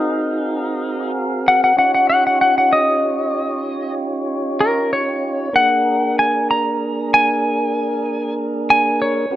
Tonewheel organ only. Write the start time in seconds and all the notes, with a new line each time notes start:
Already playing: C4 F#4 G#4 A#4 F5
1.76 C#4 D#4 F4 G4 C#5
5.53 A#3 D4 G#4 A#4
9.31 C#4 F#4 G4 A4 B4